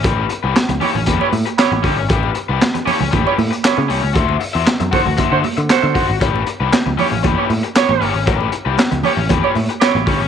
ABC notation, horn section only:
X:1
M:4/4
L:1/16
Q:1/4=117
K:Amix
V:1 name="Horn section"
z6 [EGc] z2 [EGc] z2 [EGc]3 z | z6 [EGc] z2 [EGc] z2 [EGc]3 z | z6 [FA=c] z2 [FAc] z2 [FAc]3 z | z6 [EGc] z2 [EGc] z2 [EGc]3 z |
z6 [EGc] z2 [EGc] z2 [EGc]3 z |]